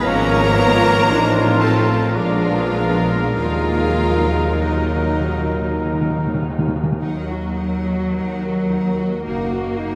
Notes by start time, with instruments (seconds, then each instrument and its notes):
Already playing: trombone section G#2, french horn section B3, trumpet G#4
0.02 double bass section G#1, trombone section F3, viola section F3 C#4, cello section A#3, french horn section F4, clarinet A#4, violin section A#4 A#5, flute C#5, cor anglais F5
0.55 viola section B3, cor anglais C#5
1.08 double bass section A1, trombone section A2, viola section F3 D4, french horn section C4 D#4, trumpet F4, cor anglais C5
1.60 cello section A3, clarinet A4, violin section A4 A5, flute C5
1.64 viola section C4
2.14 double bass section A#1, trombone section A#2 G#3, cello section F3, viola section G#3 D4, french horn section B3 D4, violin section F4 F5, clarinet F4, flute G#4, trumpet A#4, cor anglais D5
2.73 cor anglais A#4
3.33 double bass section D#2, timpani D#3, cello section F3, french horn section A#3 D#4, violin section F4 F5, clarinet F4, flute G#4, cor anglais A#4
3.38 viola section F#3 D#4
3.44 timpani D#3
3.53 timpani D#3
3.71 timpani D#3
3.78 timpani D#3
3.87 timpani D#3
4.05 timpani D#3
4.14 timpani D#3
4.22 timpani D#3
4.30 timpani D#3
4.38 timpani D#3
4.54 timpani D#3
4.60 cello section D#3, timpani D#3, trombone section F#3, violin section D#4 D#5, clarinet D#4, flute F#4
4.72 timpani D#3
4.89 timpani D#3
4.96 timpani D#3
5.05 timpani D#3
5.13 timpani D#3
5.21 timpani D#3
5.29 timpani D#3
5.38 timpani D#3
5.46 timpani D#3
5.55 timpani D#3
5.62 timpani D#3
5.70 timpani D#3
5.77 timpani D#3
5.85 timpani D#3
5.94 timpani D#3
6.01 timpani D#3
6.10 timpani D#3
6.18 timpani D#3
6.27 timpani D#3
6.34 timpani D#3
6.42 timpani D#3
6.50 timpani D#3
6.59 timpani D#3
6.68 timpani D#3
6.76 timpani D#3
6.84 timpani D#3
6.92 timpani D#3
7.02 double bass section D#2, timpani D#3, cello section F#3, viola section D#4, violin section A#4 F#5
7.30 viola section F#4, violin section F#4 D#5
7.58 viola section D#4, violin section A#4 F#5
7.88 viola section F#4, violin section F#4 D#5
8.16 double bass section D#2, viola section D#4, french horn section A#4, violin section A#4 F#5
8.43 viola section F#4, violin section F#4 D#5
8.72 viola section D#4, violin section A#4 F#5
8.98 violin section F#4 D#5, viola section F#4
9.24 double bass section F#1, cello section A#3, viola section D#4, french horn section F#4, violin section A#4
9.29 violin section F#5
9.52 viola section F#4, violin section F#4 D#5
9.77 french horn section D#4, viola section D#4, violin section A#4 F#5